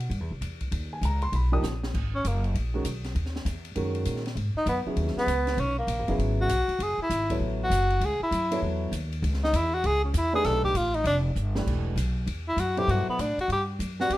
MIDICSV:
0, 0, Header, 1, 6, 480
1, 0, Start_track
1, 0, Tempo, 304105
1, 1136, Time_signature, 4, 2, 24, 8
1, 22377, End_track
2, 0, Start_track
2, 0, Title_t, "Tenor saxophone"
2, 0, Program_c, 0, 66
2, 3391, Note_on_c, 0, 61, 80
2, 3585, Note_on_c, 0, 58, 62
2, 3609, Note_off_c, 0, 61, 0
2, 3862, Note_off_c, 0, 58, 0
2, 7215, Note_on_c, 0, 63, 96
2, 7371, Note_off_c, 0, 63, 0
2, 7396, Note_on_c, 0, 59, 75
2, 7570, Note_off_c, 0, 59, 0
2, 8183, Note_on_c, 0, 59, 88
2, 8839, Note_on_c, 0, 61, 85
2, 8863, Note_off_c, 0, 59, 0
2, 9119, Note_off_c, 0, 61, 0
2, 9128, Note_on_c, 0, 58, 67
2, 9734, Note_off_c, 0, 58, 0
2, 10112, Note_on_c, 0, 66, 95
2, 10771, Note_on_c, 0, 68, 87
2, 10795, Note_off_c, 0, 66, 0
2, 11055, Note_off_c, 0, 68, 0
2, 11080, Note_on_c, 0, 64, 93
2, 11671, Note_off_c, 0, 64, 0
2, 12050, Note_on_c, 0, 66, 95
2, 12701, Note_on_c, 0, 68, 86
2, 12725, Note_off_c, 0, 66, 0
2, 12980, Note_off_c, 0, 68, 0
2, 12991, Note_on_c, 0, 64, 92
2, 13586, Note_off_c, 0, 64, 0
2, 14894, Note_on_c, 0, 63, 99
2, 15089, Note_on_c, 0, 64, 87
2, 15112, Note_off_c, 0, 63, 0
2, 15378, Note_on_c, 0, 66, 96
2, 15401, Note_off_c, 0, 64, 0
2, 15564, Note_on_c, 0, 68, 107
2, 15588, Note_off_c, 0, 66, 0
2, 15848, Note_off_c, 0, 68, 0
2, 15858, Note_on_c, 0, 61, 57
2, 16053, Note_on_c, 0, 64, 91
2, 16076, Note_off_c, 0, 61, 0
2, 16329, Note_off_c, 0, 64, 0
2, 16338, Note_on_c, 0, 68, 98
2, 16508, Note_on_c, 0, 69, 101
2, 16531, Note_off_c, 0, 68, 0
2, 16792, Note_off_c, 0, 69, 0
2, 16801, Note_on_c, 0, 67, 95
2, 16994, Note_on_c, 0, 65, 89
2, 17018, Note_off_c, 0, 67, 0
2, 17285, Note_on_c, 0, 63, 99
2, 17309, Note_off_c, 0, 65, 0
2, 17458, Note_off_c, 0, 63, 0
2, 17467, Note_on_c, 0, 62, 90
2, 17645, Note_off_c, 0, 62, 0
2, 19702, Note_on_c, 0, 64, 93
2, 19885, Note_on_c, 0, 66, 84
2, 19909, Note_off_c, 0, 64, 0
2, 20181, Note_on_c, 0, 67, 109
2, 20204, Note_off_c, 0, 66, 0
2, 20375, Note_on_c, 0, 66, 78
2, 20398, Note_off_c, 0, 67, 0
2, 20659, Note_off_c, 0, 66, 0
2, 20671, Note_on_c, 0, 59, 78
2, 20848, Note_on_c, 0, 62, 80
2, 20872, Note_off_c, 0, 59, 0
2, 21136, Note_off_c, 0, 62, 0
2, 21160, Note_on_c, 0, 66, 88
2, 21306, Note_off_c, 0, 66, 0
2, 21342, Note_on_c, 0, 67, 85
2, 21510, Note_off_c, 0, 67, 0
2, 22108, Note_on_c, 0, 66, 97
2, 22306, Note_on_c, 0, 67, 91
2, 22329, Note_off_c, 0, 66, 0
2, 22377, Note_off_c, 0, 67, 0
2, 22377, End_track
3, 0, Start_track
3, 0, Title_t, "Upright piano"
3, 0, Program_c, 1, 0
3, 1467, Note_on_c, 1, 80, 84
3, 1625, Note_off_c, 1, 80, 0
3, 1659, Note_on_c, 1, 82, 90
3, 1931, Note_off_c, 1, 82, 0
3, 1934, Note_on_c, 1, 84, 106
3, 2098, Note_off_c, 1, 84, 0
3, 2131, Note_on_c, 1, 83, 85
3, 2400, Note_on_c, 1, 53, 78
3, 2405, Note_on_c, 1, 58, 71
3, 2407, Note_off_c, 1, 83, 0
3, 2411, Note_on_c, 1, 63, 74
3, 2413, Note_on_c, 1, 67, 86
3, 2417, Note_on_c, 1, 87, 102
3, 2517, Note_off_c, 1, 87, 0
3, 2558, Note_off_c, 1, 53, 0
3, 2560, Note_off_c, 1, 58, 0
3, 2563, Note_off_c, 1, 63, 0
3, 2564, Note_off_c, 1, 67, 0
3, 4324, Note_on_c, 1, 51, 65
3, 4329, Note_on_c, 1, 56, 62
3, 4336, Note_on_c, 1, 61, 57
3, 4341, Note_on_c, 1, 70, 74
3, 4342, Note_on_c, 1, 66, 64
3, 4479, Note_off_c, 1, 51, 0
3, 4481, Note_off_c, 1, 56, 0
3, 4485, Note_off_c, 1, 61, 0
3, 4488, Note_off_c, 1, 66, 0
3, 4488, Note_off_c, 1, 70, 0
3, 5926, Note_on_c, 1, 51, 61
3, 5928, Note_on_c, 1, 56, 58
3, 5933, Note_on_c, 1, 66, 57
3, 5935, Note_on_c, 1, 61, 56
3, 5940, Note_on_c, 1, 70, 67
3, 6652, Note_off_c, 1, 51, 0
3, 6653, Note_off_c, 1, 56, 0
3, 6655, Note_off_c, 1, 66, 0
3, 6656, Note_off_c, 1, 61, 0
3, 6658, Note_off_c, 1, 70, 0
3, 7675, Note_on_c, 1, 49, 55
3, 7676, Note_on_c, 1, 59, 51
3, 7678, Note_on_c, 1, 54, 56
3, 7685, Note_on_c, 1, 64, 54
3, 7687, Note_on_c, 1, 68, 66
3, 8297, Note_off_c, 1, 49, 0
3, 8298, Note_off_c, 1, 59, 0
3, 8299, Note_off_c, 1, 54, 0
3, 8302, Note_off_c, 1, 64, 0
3, 8303, Note_off_c, 1, 68, 0
3, 9595, Note_on_c, 1, 49, 70
3, 9596, Note_on_c, 1, 54, 67
3, 9598, Note_on_c, 1, 59, 67
3, 9602, Note_on_c, 1, 64, 65
3, 9603, Note_on_c, 1, 68, 78
3, 10217, Note_off_c, 1, 49, 0
3, 10218, Note_off_c, 1, 54, 0
3, 10219, Note_off_c, 1, 59, 0
3, 10221, Note_off_c, 1, 64, 0
3, 10221, Note_off_c, 1, 68, 0
3, 11522, Note_on_c, 1, 54, 61
3, 11525, Note_on_c, 1, 59, 56
3, 11532, Note_on_c, 1, 64, 57
3, 11534, Note_on_c, 1, 69, 54
3, 11538, Note_on_c, 1, 73, 71
3, 12141, Note_off_c, 1, 54, 0
3, 12143, Note_off_c, 1, 59, 0
3, 12146, Note_off_c, 1, 64, 0
3, 12147, Note_off_c, 1, 69, 0
3, 12149, Note_off_c, 1, 73, 0
3, 13436, Note_on_c, 1, 54, 68
3, 13440, Note_on_c, 1, 59, 65
3, 13441, Note_on_c, 1, 64, 70
3, 13448, Note_on_c, 1, 69, 66
3, 13455, Note_on_c, 1, 73, 82
3, 14058, Note_off_c, 1, 54, 0
3, 14060, Note_off_c, 1, 59, 0
3, 14060, Note_off_c, 1, 64, 0
3, 14064, Note_off_c, 1, 69, 0
3, 14067, Note_off_c, 1, 73, 0
3, 16305, Note_on_c, 1, 57, 72
3, 16309, Note_on_c, 1, 62, 72
3, 16314, Note_on_c, 1, 63, 68
3, 16314, Note_on_c, 1, 67, 67
3, 16321, Note_on_c, 1, 71, 76
3, 16932, Note_off_c, 1, 57, 0
3, 16934, Note_off_c, 1, 62, 0
3, 16937, Note_off_c, 1, 63, 0
3, 16937, Note_off_c, 1, 67, 0
3, 16940, Note_off_c, 1, 71, 0
3, 18234, Note_on_c, 1, 52, 66
3, 18244, Note_on_c, 1, 57, 60
3, 18247, Note_on_c, 1, 67, 62
3, 18249, Note_on_c, 1, 62, 65
3, 18255, Note_on_c, 1, 71, 73
3, 18857, Note_off_c, 1, 52, 0
3, 18862, Note_off_c, 1, 57, 0
3, 18864, Note_off_c, 1, 67, 0
3, 18865, Note_off_c, 1, 62, 0
3, 18868, Note_off_c, 1, 71, 0
3, 20160, Note_on_c, 1, 54, 65
3, 20163, Note_on_c, 1, 47, 61
3, 20166, Note_on_c, 1, 64, 63
3, 20175, Note_on_c, 1, 69, 62
3, 20175, Note_on_c, 1, 72, 69
3, 20782, Note_off_c, 1, 54, 0
3, 20783, Note_off_c, 1, 47, 0
3, 20785, Note_off_c, 1, 64, 0
3, 20789, Note_off_c, 1, 69, 0
3, 20789, Note_off_c, 1, 72, 0
3, 22090, Note_on_c, 1, 60, 64
3, 22091, Note_on_c, 1, 55, 67
3, 22093, Note_on_c, 1, 66, 63
3, 22097, Note_on_c, 1, 71, 59
3, 22106, Note_on_c, 1, 74, 76
3, 22377, Note_off_c, 1, 55, 0
3, 22377, Note_off_c, 1, 60, 0
3, 22377, Note_off_c, 1, 66, 0
3, 22377, Note_off_c, 1, 71, 0
3, 22377, Note_off_c, 1, 74, 0
3, 22377, End_track
4, 0, Start_track
4, 0, Title_t, "Upright bass"
4, 0, Program_c, 2, 32
4, 153, Note_on_c, 2, 43, 80
4, 318, Note_off_c, 2, 43, 0
4, 318, Note_on_c, 2, 40, 56
4, 473, Note_off_c, 2, 40, 0
4, 483, Note_on_c, 2, 36, 64
4, 638, Note_off_c, 2, 36, 0
4, 646, Note_on_c, 2, 40, 77
4, 1116, Note_off_c, 2, 40, 0
4, 1130, Note_on_c, 2, 39, 83
4, 1591, Note_off_c, 2, 39, 0
4, 1601, Note_on_c, 2, 37, 88
4, 2073, Note_off_c, 2, 37, 0
4, 2087, Note_on_c, 2, 35, 80
4, 2556, Note_off_c, 2, 35, 0
4, 2566, Note_on_c, 2, 34, 80
4, 3035, Note_off_c, 2, 34, 0
4, 3061, Note_on_c, 2, 32, 73
4, 3523, Note_off_c, 2, 32, 0
4, 3544, Note_on_c, 2, 30, 81
4, 4004, Note_off_c, 2, 30, 0
4, 4018, Note_on_c, 2, 34, 77
4, 4481, Note_off_c, 2, 34, 0
4, 4495, Note_on_c, 2, 35, 71
4, 4959, Note_off_c, 2, 35, 0
4, 4972, Note_on_c, 2, 39, 75
4, 5438, Note_off_c, 2, 39, 0
4, 5447, Note_on_c, 2, 40, 92
4, 5915, Note_off_c, 2, 40, 0
4, 5932, Note_on_c, 2, 42, 77
4, 6398, Note_off_c, 2, 42, 0
4, 6405, Note_on_c, 2, 46, 81
4, 6864, Note_off_c, 2, 46, 0
4, 6873, Note_on_c, 2, 44, 86
4, 7164, Note_off_c, 2, 44, 0
4, 7356, Note_on_c, 2, 42, 90
4, 7645, Note_off_c, 2, 42, 0
4, 7832, Note_on_c, 2, 39, 83
4, 8123, Note_off_c, 2, 39, 0
4, 8310, Note_on_c, 2, 37, 83
4, 8787, Note_off_c, 2, 37, 0
4, 8796, Note_on_c, 2, 35, 87
4, 9259, Note_off_c, 2, 35, 0
4, 9268, Note_on_c, 2, 34, 82
4, 9445, Note_off_c, 2, 34, 0
4, 9445, Note_on_c, 2, 32, 54
4, 9592, Note_off_c, 2, 32, 0
4, 9602, Note_on_c, 2, 30, 62
4, 9748, Note_off_c, 2, 30, 0
4, 9758, Note_on_c, 2, 32, 75
4, 10222, Note_off_c, 2, 32, 0
4, 10232, Note_on_c, 2, 35, 78
4, 10523, Note_off_c, 2, 35, 0
4, 10714, Note_on_c, 2, 30, 76
4, 11000, Note_off_c, 2, 30, 0
4, 11199, Note_on_c, 2, 32, 80
4, 11659, Note_off_c, 2, 32, 0
4, 11668, Note_on_c, 2, 33, 79
4, 12143, Note_off_c, 2, 33, 0
4, 12152, Note_on_c, 2, 30, 85
4, 12628, Note_off_c, 2, 30, 0
4, 12638, Note_on_c, 2, 37, 85
4, 12927, Note_off_c, 2, 37, 0
4, 13120, Note_on_c, 2, 42, 89
4, 13592, Note_off_c, 2, 42, 0
4, 13602, Note_on_c, 2, 40, 84
4, 14063, Note_off_c, 2, 40, 0
4, 14073, Note_on_c, 2, 39, 86
4, 14548, Note_off_c, 2, 39, 0
4, 14558, Note_on_c, 2, 37, 88
4, 15031, Note_off_c, 2, 37, 0
4, 15045, Note_on_c, 2, 40, 95
4, 15514, Note_off_c, 2, 40, 0
4, 15529, Note_on_c, 2, 37, 86
4, 15991, Note_off_c, 2, 37, 0
4, 16000, Note_on_c, 2, 40, 82
4, 16472, Note_off_c, 2, 40, 0
4, 16491, Note_on_c, 2, 35, 81
4, 16944, Note_off_c, 2, 35, 0
4, 16953, Note_on_c, 2, 33, 88
4, 17418, Note_off_c, 2, 33, 0
4, 17428, Note_on_c, 2, 29, 89
4, 17906, Note_off_c, 2, 29, 0
4, 17922, Note_on_c, 2, 31, 81
4, 18393, Note_off_c, 2, 31, 0
4, 18413, Note_on_c, 2, 28, 79
4, 18861, Note_off_c, 2, 28, 0
4, 18870, Note_on_c, 2, 35, 87
4, 19348, Note_off_c, 2, 35, 0
4, 19361, Note_on_c, 2, 40, 76
4, 19821, Note_off_c, 2, 40, 0
4, 19830, Note_on_c, 2, 42, 76
4, 20309, Note_off_c, 2, 42, 0
4, 20323, Note_on_c, 2, 43, 79
4, 20611, Note_off_c, 2, 43, 0
4, 20810, Note_on_c, 2, 45, 85
4, 21095, Note_off_c, 2, 45, 0
4, 21280, Note_on_c, 2, 43, 79
4, 21754, Note_off_c, 2, 43, 0
4, 21769, Note_on_c, 2, 42, 82
4, 22239, Note_off_c, 2, 42, 0
4, 22250, Note_on_c, 2, 40, 88
4, 22377, Note_off_c, 2, 40, 0
4, 22377, End_track
5, 0, Start_track
5, 0, Title_t, "Muted upright bass strokes"
5, 7175, Note_on_c, 9, 29, 39
5, 7333, Note_off_c, 9, 29, 0
5, 7666, Note_on_c, 9, 29, 38
5, 7824, Note_off_c, 9, 29, 0
5, 8145, Note_on_c, 9, 29, 37
5, 8303, Note_off_c, 9, 29, 0
5, 10545, Note_on_c, 9, 29, 37
5, 10703, Note_off_c, 9, 29, 0
5, 11009, Note_on_c, 9, 29, 36
5, 11167, Note_off_c, 9, 29, 0
5, 12939, Note_on_c, 9, 29, 39
5, 13097, Note_off_c, 9, 29, 0
5, 20642, Note_on_c, 9, 29, 39
5, 20799, Note_off_c, 9, 29, 0
5, 21113, Note_on_c, 9, 29, 39
5, 21271, Note_off_c, 9, 29, 0
5, 22377, End_track
6, 0, Start_track
6, 0, Title_t, "Drums"
6, 5, Note_on_c, 9, 51, 43
6, 163, Note_off_c, 9, 51, 0
6, 176, Note_on_c, 9, 51, 53
6, 334, Note_off_c, 9, 51, 0
6, 659, Note_on_c, 9, 44, 50
6, 659, Note_on_c, 9, 51, 65
6, 817, Note_off_c, 9, 44, 0
6, 817, Note_off_c, 9, 51, 0
6, 955, Note_on_c, 9, 51, 45
6, 965, Note_on_c, 9, 36, 45
6, 1113, Note_off_c, 9, 51, 0
6, 1123, Note_off_c, 9, 36, 0
6, 1135, Note_on_c, 9, 51, 62
6, 1293, Note_off_c, 9, 51, 0
6, 1623, Note_on_c, 9, 44, 64
6, 1623, Note_on_c, 9, 51, 69
6, 1781, Note_off_c, 9, 44, 0
6, 1781, Note_off_c, 9, 51, 0
6, 1920, Note_on_c, 9, 51, 43
6, 2078, Note_off_c, 9, 51, 0
6, 2095, Note_on_c, 9, 51, 59
6, 2253, Note_off_c, 9, 51, 0
6, 2578, Note_on_c, 9, 44, 59
6, 2583, Note_on_c, 9, 38, 49
6, 2736, Note_off_c, 9, 44, 0
6, 2741, Note_off_c, 9, 38, 0
6, 2896, Note_on_c, 9, 38, 57
6, 3054, Note_off_c, 9, 38, 0
6, 3066, Note_on_c, 9, 36, 72
6, 3069, Note_on_c, 9, 49, 67
6, 3224, Note_off_c, 9, 36, 0
6, 3227, Note_off_c, 9, 49, 0
6, 3545, Note_on_c, 9, 44, 55
6, 3545, Note_on_c, 9, 51, 66
6, 3703, Note_off_c, 9, 44, 0
6, 3703, Note_off_c, 9, 51, 0
6, 3853, Note_on_c, 9, 51, 39
6, 4011, Note_off_c, 9, 51, 0
6, 4031, Note_on_c, 9, 51, 61
6, 4189, Note_off_c, 9, 51, 0
6, 4493, Note_on_c, 9, 44, 63
6, 4493, Note_on_c, 9, 51, 69
6, 4651, Note_off_c, 9, 44, 0
6, 4651, Note_off_c, 9, 51, 0
6, 4805, Note_on_c, 9, 51, 42
6, 4810, Note_on_c, 9, 38, 36
6, 4963, Note_off_c, 9, 51, 0
6, 4967, Note_off_c, 9, 38, 0
6, 4981, Note_on_c, 9, 51, 54
6, 5139, Note_off_c, 9, 51, 0
6, 5143, Note_on_c, 9, 38, 29
6, 5300, Note_off_c, 9, 38, 0
6, 5302, Note_on_c, 9, 38, 43
6, 5460, Note_off_c, 9, 38, 0
6, 5461, Note_on_c, 9, 44, 54
6, 5461, Note_on_c, 9, 51, 66
6, 5619, Note_off_c, 9, 44, 0
6, 5619, Note_off_c, 9, 51, 0
6, 5757, Note_on_c, 9, 51, 43
6, 5915, Note_off_c, 9, 51, 0
6, 5928, Note_on_c, 9, 51, 61
6, 6086, Note_off_c, 9, 51, 0
6, 6230, Note_on_c, 9, 51, 43
6, 6387, Note_off_c, 9, 51, 0
6, 6399, Note_on_c, 9, 44, 53
6, 6399, Note_on_c, 9, 51, 68
6, 6557, Note_off_c, 9, 44, 0
6, 6557, Note_off_c, 9, 51, 0
6, 6572, Note_on_c, 9, 38, 27
6, 6718, Note_on_c, 9, 51, 41
6, 6730, Note_off_c, 9, 38, 0
6, 6739, Note_on_c, 9, 38, 38
6, 6876, Note_off_c, 9, 51, 0
6, 6893, Note_on_c, 9, 51, 52
6, 6897, Note_off_c, 9, 38, 0
6, 7051, Note_off_c, 9, 51, 0
6, 7364, Note_on_c, 9, 44, 51
6, 7364, Note_on_c, 9, 51, 65
6, 7522, Note_off_c, 9, 44, 0
6, 7522, Note_off_c, 9, 51, 0
6, 7839, Note_on_c, 9, 51, 55
6, 7997, Note_off_c, 9, 51, 0
6, 8014, Note_on_c, 9, 38, 28
6, 8172, Note_off_c, 9, 38, 0
6, 8174, Note_on_c, 9, 38, 44
6, 8332, Note_off_c, 9, 38, 0
6, 8334, Note_on_c, 9, 44, 62
6, 8334, Note_on_c, 9, 51, 67
6, 8492, Note_off_c, 9, 44, 0
6, 8492, Note_off_c, 9, 51, 0
6, 8633, Note_on_c, 9, 51, 44
6, 8638, Note_on_c, 9, 38, 48
6, 8791, Note_off_c, 9, 51, 0
6, 8795, Note_off_c, 9, 38, 0
6, 8806, Note_on_c, 9, 51, 58
6, 8964, Note_off_c, 9, 51, 0
6, 9282, Note_on_c, 9, 44, 49
6, 9282, Note_on_c, 9, 51, 68
6, 9440, Note_off_c, 9, 44, 0
6, 9440, Note_off_c, 9, 51, 0
6, 9596, Note_on_c, 9, 51, 42
6, 9753, Note_off_c, 9, 51, 0
6, 9778, Note_on_c, 9, 51, 57
6, 9936, Note_off_c, 9, 51, 0
6, 10250, Note_on_c, 9, 44, 63
6, 10250, Note_on_c, 9, 51, 73
6, 10408, Note_off_c, 9, 44, 0
6, 10408, Note_off_c, 9, 51, 0
6, 10557, Note_on_c, 9, 51, 43
6, 10715, Note_off_c, 9, 51, 0
6, 10735, Note_on_c, 9, 51, 64
6, 10893, Note_off_c, 9, 51, 0
6, 11212, Note_on_c, 9, 44, 63
6, 11212, Note_on_c, 9, 51, 67
6, 11370, Note_off_c, 9, 44, 0
6, 11370, Note_off_c, 9, 51, 0
6, 11521, Note_on_c, 9, 36, 41
6, 11521, Note_on_c, 9, 51, 64
6, 11679, Note_off_c, 9, 36, 0
6, 11679, Note_off_c, 9, 51, 0
6, 12175, Note_on_c, 9, 44, 61
6, 12175, Note_on_c, 9, 51, 72
6, 12333, Note_off_c, 9, 44, 0
6, 12333, Note_off_c, 9, 51, 0
6, 12475, Note_on_c, 9, 51, 43
6, 12633, Note_off_c, 9, 51, 0
6, 12648, Note_on_c, 9, 51, 62
6, 12806, Note_off_c, 9, 51, 0
6, 13135, Note_on_c, 9, 44, 57
6, 13135, Note_on_c, 9, 51, 69
6, 13293, Note_off_c, 9, 44, 0
6, 13293, Note_off_c, 9, 51, 0
6, 13442, Note_on_c, 9, 51, 70
6, 13600, Note_off_c, 9, 51, 0
6, 14089, Note_on_c, 9, 44, 66
6, 14089, Note_on_c, 9, 51, 73
6, 14246, Note_off_c, 9, 44, 0
6, 14246, Note_off_c, 9, 51, 0
6, 14403, Note_on_c, 9, 51, 46
6, 14561, Note_off_c, 9, 51, 0
6, 14582, Note_on_c, 9, 51, 64
6, 14739, Note_on_c, 9, 38, 28
6, 14740, Note_off_c, 9, 51, 0
6, 14896, Note_off_c, 9, 38, 0
6, 14902, Note_on_c, 9, 38, 45
6, 15051, Note_on_c, 9, 44, 60
6, 15051, Note_on_c, 9, 51, 77
6, 15060, Note_off_c, 9, 38, 0
6, 15209, Note_off_c, 9, 44, 0
6, 15209, Note_off_c, 9, 51, 0
6, 15528, Note_on_c, 9, 51, 63
6, 15686, Note_off_c, 9, 51, 0
6, 16005, Note_on_c, 9, 44, 69
6, 16005, Note_on_c, 9, 51, 71
6, 16163, Note_off_c, 9, 44, 0
6, 16163, Note_off_c, 9, 51, 0
6, 16485, Note_on_c, 9, 51, 58
6, 16490, Note_on_c, 9, 38, 39
6, 16643, Note_off_c, 9, 51, 0
6, 16648, Note_off_c, 9, 38, 0
6, 16792, Note_on_c, 9, 36, 62
6, 16950, Note_off_c, 9, 36, 0
6, 16966, Note_on_c, 9, 44, 58
6, 16966, Note_on_c, 9, 51, 70
6, 17124, Note_off_c, 9, 44, 0
6, 17124, Note_off_c, 9, 51, 0
6, 17270, Note_on_c, 9, 51, 43
6, 17427, Note_off_c, 9, 51, 0
6, 17448, Note_on_c, 9, 51, 65
6, 17605, Note_off_c, 9, 51, 0
6, 17930, Note_on_c, 9, 44, 56
6, 18088, Note_off_c, 9, 44, 0
6, 18239, Note_on_c, 9, 38, 61
6, 18397, Note_off_c, 9, 38, 0
6, 18417, Note_on_c, 9, 36, 67
6, 18426, Note_on_c, 9, 49, 66
6, 18575, Note_off_c, 9, 36, 0
6, 18583, Note_off_c, 9, 49, 0
6, 18899, Note_on_c, 9, 44, 61
6, 18899, Note_on_c, 9, 51, 72
6, 19057, Note_off_c, 9, 44, 0
6, 19057, Note_off_c, 9, 51, 0
6, 19372, Note_on_c, 9, 51, 63
6, 19530, Note_off_c, 9, 51, 0
6, 19852, Note_on_c, 9, 44, 57
6, 19852, Note_on_c, 9, 51, 73
6, 20010, Note_off_c, 9, 44, 0
6, 20010, Note_off_c, 9, 51, 0
6, 20160, Note_on_c, 9, 51, 44
6, 20318, Note_off_c, 9, 51, 0
6, 20347, Note_on_c, 9, 51, 56
6, 20505, Note_off_c, 9, 51, 0
6, 20821, Note_on_c, 9, 44, 51
6, 20821, Note_on_c, 9, 51, 65
6, 20979, Note_off_c, 9, 44, 0
6, 20979, Note_off_c, 9, 51, 0
6, 21134, Note_on_c, 9, 51, 43
6, 21292, Note_off_c, 9, 51, 0
6, 21306, Note_on_c, 9, 51, 58
6, 21463, Note_off_c, 9, 51, 0
6, 21782, Note_on_c, 9, 44, 66
6, 21782, Note_on_c, 9, 51, 66
6, 21940, Note_off_c, 9, 44, 0
6, 21940, Note_off_c, 9, 51, 0
6, 22102, Note_on_c, 9, 38, 46
6, 22260, Note_off_c, 9, 38, 0
6, 22263, Note_on_c, 9, 51, 60
6, 22377, Note_off_c, 9, 51, 0
6, 22377, End_track
0, 0, End_of_file